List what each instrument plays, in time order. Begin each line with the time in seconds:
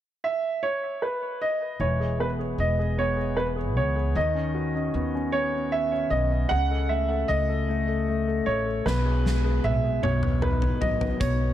0.24 grand piano E5
0.63 grand piano C#5
1.02 grand piano B4
1.42 grand piano D#5
1.80 upright bass E1, grand piano E3 C#5
2.00 grand piano G#4
2.19 grand piano B3 B4
2.39 grand piano G#4
2.58 upright bass E1, grand piano B3 D#5
2.79 grand piano G#4
2.98 grand piano B3 C#5
3.17 grand piano G#4
3.36 grand piano B3 B4
3.56 grand piano G#4
3.76 upright bass C#2, grand piano B3 C#5
3.96 grand piano G#4
4.15 upright bass D#2, grand piano D#3 D#5
4.35 grand piano C#4
4.55 grand piano F#4
4.75 grand piano C#4
4.94 upright bass D#2, grand piano B3
5.15 grand piano C#4
5.32 grand piano B3 C#5
5.54 grand piano C#4
5.72 grand piano E5
5.92 grand piano C#4
6.10 upright bass B1, grand piano B3 D#5
6.32 grand piano C#4
6.49 upright bass C#2, grand piano C#3 F#5
6.71 grand piano A4
6.89 grand piano A3 E5
7.10 grand piano A4
7.28 upright bass C#2, grand piano A3 D#5
7.49 grand piano A4
7.69 grand piano A3
7.89 grand piano A4
8.09 grand piano A3
8.28 grand piano A4
8.46 upright bass A1, grand piano A3 C#5
8.66 grand piano A4
8.86 upright bass B1, grand piano B2 B4, snare
9.05 grand piano G#4
9.25 grand piano G#3, snare
9.45 grand piano G#4
9.64 upright bass B1, grand piano G#3 E5, high tom
9.84 grand piano G#4
10.03 upright bass B1, grand piano B2 C#5, mid tom
10.23 grand piano B3, mid tom
10.42 grand piano D#4 B4, mid tom
10.62 grand piano B3, floor tom
10.81 upright bass A1, grand piano F#3 D#5, floor tom
11.01 grand piano B3, floor tom
11.20 upright bass B1, grand piano B2 C#5, kick, closed hi-hat
11.41 grand piano B3